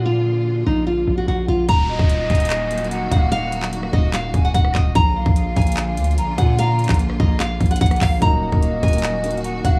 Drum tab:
HH |------------------------------------------------------------------------------------------------|x-----------------------x-----------x--x--x--x--x-----------x---x---x---x-----------x-----------|x-----------x-----------x-----------------------x-----------x-----------x-----------------------|x-----------------------x-----------x--x--x--x--x-----------x---x---x---x-----------x-----------|
CP |------------------------------------------------------------------------------------------------|------------------------------------------------x-----------------------------------------------|------------------x-----------------------------x-----------------------------------x-----------|------------------------------------------------x-----------------------------------------------|
SD |------------------------------------------------------------------------------------------------|------------------------------------------------------------------------------------------------|------------------------------r-----------------------------------------------r-----------------|------------------------------------------------------------------------------------------------|
BD |------------------------------------------------------------------------------------------------|o-----------------o-----------------o-----------------------------------------------o-----------|------------------------------------o-----------------------o-----------o-----------o-----------|o-----------------o-----------------o-----------------------------------------------o-----------|

HH |x-----------x--x--x--x--x-----------------------x-----------x--x--x--x--x--x--x--x--o-----------|x-----------------------x-----------x--x--x--x--x-----------x---x---x---x-----------x-----------|
CP |------------------x-----------------------------x-----------------------------------x-----------|------------------------------------------------x-----------------------------------------------|
SD |------------------------------r-----------------------------------------------r-----------------|------------------------------------------------------------------------------------------------|
BD |------------------o-----------------o-----------------------o-----------o-----------o-----------|o-----------------o-----------------o-----------------------------------------------o-----------|